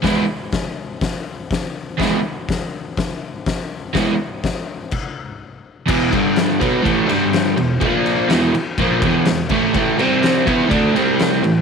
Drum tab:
CC |--------|--------|----x---|x-------|
RD |--------|--------|--------|-xxxxxxx|
HH |o-o-o-o-|o-o-o-o-|o-o-----|--------|
SD |o-o-o-o-|o-o-o-o-|o-o-----|--o---o-|
BD |o-o-o-o-|o-o-o-o-|o-o-o---|oo-oo---|

CC |--------|--------|
RD |xxxxxxxx|xxxxxxxx|
HH |--------|--------|
SD |--o---o-|--o---o-|
BD |o---oo-o|o--oo---|